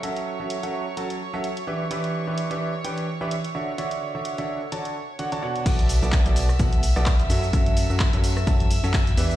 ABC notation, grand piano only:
X:1
M:4/4
L:1/16
Q:"Swing 16ths" 1/4=128
K:F#phr
V:1 name="Grand piano"
[F,CFAe]3 [F,CFAe]2 [F,CFAe]2 z [F,CFAa]2 z [F,CFAe] z2 [E,DGBe] z | [E,DGBe]3 [E,DGBe]2 [E,DGBe]2 z [E,DGBg]2 z [E,DGBe] z2 [D,DFce] z | [D,DFce]3 [D,DFce]2 [D,DFce]2 z [D,DFca]2 z2 [D,DFcf] [D,DFca] [B,,DFcf]2 | [B,,B,FAd]3 [B,,B,FAd]2 [B,,B,FAd]2 z [B,,B,FAf]2 z [B,,B,FAd] z2 [F,CFAe] z |
[F,CFAe]3 [F,CFAe]2 [F,CFAe]2 z [F,CFAa]2 z [F,CFAe] z2 [E,DGBe] z |]